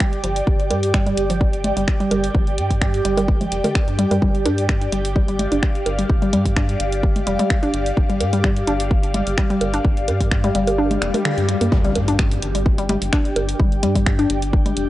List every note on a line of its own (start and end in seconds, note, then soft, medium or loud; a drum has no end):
0.00 0.06 G3 loud
0.00 11.71 G4 medium
0.00 11.73 G4 medium
0.00 11.72 D5 medium
0.00 5.28 G5 medium
0.00 finger snap medium
0.00 kick loud
0.13 closed hi-hat soft
0.24 0.42 G1 medium
0.24 0.27 F3 medium
0.24 closed hi-hat medium
0.36 closed hi-hat soft
0.47 0.72 G1 loud
0.47 kick loud
0.60 closed hi-hat soft
0.70 1.13 G2 medium
0.70 0.76 G3 medium
0.70 closed hi-hat medium
0.70 low bongo medium
0.83 closed hi-hat soft
0.94 1.00 G3 loud
0.94 finger snap medium
0.94 kick loud
1.06 1.11 G3 loud
1.06 closed hi-hat soft
1.17 1.72 G1 medium
1.17 closed hi-hat medium
1.30 1.33 F3 medium
1.30 closed hi-hat soft
1.41 kick loud
1.53 closed hi-hat soft
1.64 closed hi-hat medium
1.64 low conga medium
1.77 1.85 G1 medium
1.77 1.82 G3 medium
1.77 closed hi-hat soft
1.88 finger snap medium
1.88 kick loud
2.00 2.05 G3 loud
2.00 closed hi-hat soft
2.11 2.29 G1 loud
2.11 2.17 G3 loud
2.11 closed hi-hat medium
2.11 low bongo medium
2.24 closed hi-hat soft
2.35 2.59 G1 loud
2.35 2.38 F3 medium
2.35 kick loud
2.47 closed hi-hat soft
2.58 3.01 G2 medium
2.58 closed hi-hat medium
2.71 kick medium
2.71 closed hi-hat soft
2.81 2.87 G3 medium
2.81 finger snap medium
2.81 kick loud
2.94 closed hi-hat soft
3.05 3.47 G1 medium
3.05 3.11 G3 loud
3.05 closed hi-hat medium
3.17 3.22 G3 loud
3.17 closed hi-hat soft
3.17 low bongo medium
3.28 kick loud
3.41 3.44 F3 medium
3.41 closed hi-hat soft
3.41 low conga medium
3.52 3.61 F1 medium
3.52 closed hi-hat medium
3.64 3.72 D3 medium
3.64 closed hi-hat soft
3.64 low bongo medium
3.64 low conga medium
3.75 finger snap medium
3.75 kick loud
3.88 4.05 G2 medium
3.88 3.91 D4 medium
3.88 closed hi-hat soft
3.99 4.04 G3 loud
3.99 closed hi-hat medium
4.11 4.19 G2 medium
4.11 4.16 G3 loud
4.11 closed hi-hat soft
4.11 low bongo medium
4.22 4.47 G1 medium
4.22 4.28 G3 loud
4.22 kick loud
4.35 closed hi-hat soft
4.45 4.88 G2 medium
4.45 4.51 D4 loud
4.45 closed hi-hat medium
4.45 low bongo soft
4.58 closed hi-hat soft
4.69 finger snap medium
4.69 kick loud
4.82 closed hi-hat soft
4.92 5.47 G1 medium
4.92 4.98 G3 medium
4.92 closed hi-hat medium
5.05 closed hi-hat soft
5.16 5.22 G3 loud
5.16 kick loud
5.26 5.33 G3 loud
5.26 11.75 F5 medium
5.26 closed hi-hat soft
5.39 closed hi-hat medium
5.39 low conga medium
5.52 5.60 G1 medium
5.52 5.57 D4 loud
5.52 closed hi-hat soft
5.63 finger snap medium
5.63 kick loud
5.75 closed hi-hat soft
5.86 6.04 G1 loud
5.86 closed hi-hat medium
5.86 low bongo medium
5.99 6.04 G3 medium
5.99 closed hi-hat soft
6.10 6.34 G1 loud
6.10 kick loud
6.22 6.27 G3 loud
6.22 closed hi-hat soft
6.33 6.76 G2 medium
6.33 6.39 G3 loud
6.33 closed hi-hat medium
6.46 kick medium
6.46 closed hi-hat medium
6.56 6.62 D4 loud
6.56 finger snap medium
6.56 kick loud
6.69 closed hi-hat soft
6.80 7.22 G1 medium
6.80 closed hi-hat medium
6.92 closed hi-hat soft
7.03 7.09 G3 medium
7.03 kick loud
7.16 closed hi-hat soft
7.16 low conga medium
7.27 7.36 F1 medium
7.27 7.32 G3 loud
7.27 closed hi-hat medium
7.39 7.44 G3 loud
7.39 closed hi-hat soft
7.39 low conga medium
7.50 finger snap medium
7.50 kick loud
7.63 7.68 D4 loud
7.63 closed hi-hat soft
7.74 7.92 G1 medium
7.74 closed hi-hat medium
7.86 closed hi-hat soft
7.97 8.22 G1 medium
7.97 kick loud
8.10 8.15 G3 medium
8.10 closed hi-hat soft
8.21 8.63 G2 medium
8.21 closed hi-hat medium
8.21 low bongo soft
8.33 8.38 G3 medium
8.33 closed hi-hat medium
8.44 8.50 G3 loud
8.44 finger snap medium
8.44 kick loud
8.57 closed hi-hat soft
8.67 9.22 G1 medium
8.67 8.73 D4 loud
8.67 closed hi-hat medium
8.80 closed hi-hat medium
8.91 kick loud
9.03 closed hi-hat soft
9.14 9.20 G3 medium
9.14 closed hi-hat medium
9.14 low conga medium
9.27 9.35 G1 medium
9.27 closed hi-hat medium
9.38 9.43 G3 loud
9.38 finger snap medium
9.38 kick loud
9.50 9.55 G3 loud
9.50 closed hi-hat soft
9.61 9.79 G1 loud
9.61 closed hi-hat medium
9.61 low bongo medium
9.74 9.79 D4 loud
9.74 closed hi-hat soft
9.85 10.10 G1 loud
9.85 kick loud
9.97 closed hi-hat soft
10.08 10.51 G2 medium
10.08 closed hi-hat medium
10.08 low bongo soft
10.21 10.25 G3 medium
10.21 kick medium
10.21 closed hi-hat medium
10.31 finger snap medium
10.31 kick loud
10.44 10.49 G3 loud
10.44 closed hi-hat soft
10.44 low conga medium
10.55 10.97 G1 medium
10.55 10.61 G3 loud
10.55 closed hi-hat medium
10.67 closed hi-hat medium
10.67 low bongo medium
10.78 10.84 D4 loud
10.78 swell medium
10.91 closed hi-hat soft
10.91 low conga medium
11.02 11.11 F1 medium
11.02 11.07 A#3 medium
11.02 finger snap medium
11.02 closed hi-hat medium
11.14 closed hi-hat medium
11.14 low bongo soft
11.14 low conga medium
11.25 11.31 D3 loud
11.25 finger snap medium
11.38 11.55 G2 loud
11.38 closed hi-hat soft
11.49 11.54 G3 medium
11.49 closed hi-hat medium
11.61 11.69 G2 medium
11.61 11.69 A#3 medium
11.61 closed hi-hat medium
11.61 low bongo soft
11.72 11.97 G1 loud
11.72 11.78 G3 loud
11.72 14.89 D4 medium
11.72 14.89 G4 medium
11.72 kick loud
11.72 impact medium
11.85 11.90 G3 loud
11.85 closed hi-hat soft
11.96 12.38 G2 medium
11.96 closed hi-hat medium
11.96 low bongo medium
12.08 12.13 D4 loud
12.08 closed hi-hat medium
12.17 14.89 D5 medium
12.17 finger snap medium
12.17 kick loud
12.31 closed hi-hat soft
12.42 12.97 G1 medium
12.42 closed hi-hat medium
12.55 12.60 G3 medium
12.55 closed hi-hat medium
12.66 14.89 G5 medium
12.66 kick loud
12.78 12.83 G3 loud
12.78 closed hi-hat soft
12.89 12.95 G3 loud
12.89 closed hi-hat medium
12.89 low conga loud
13.02 13.10 G1 medium
13.02 closed hi-hat medium
13.13 13.18 D4 loud
13.13 finger snap medium
13.13 kick loud
13.25 closed hi-hat soft
13.36 13.54 G1 loud
13.36 closed hi-hat medium
13.36 low bongo medium
13.49 closed hi-hat medium
13.60 13.85 G1 loud
13.60 13.65 G3 medium
13.60 kick loud
13.72 closed hi-hat soft
13.83 14.26 G2 medium
13.83 13.89 G3 loud
13.83 closed hi-hat medium
13.96 14.00 G3 loud
13.96 kick medium
13.96 closed hi-hat medium
14.06 finger snap loud
14.06 kick loud
14.19 14.24 D4 loud
14.19 closed hi-hat soft
14.30 14.72 G1 medium
14.30 closed hi-hat medium
14.42 closed hi-hat medium
14.53 kick loud
14.66 14.71 G3 medium
14.66 closed hi-hat soft
14.66 low conga medium
14.77 14.86 F1 medium
14.77 closed hi-hat medium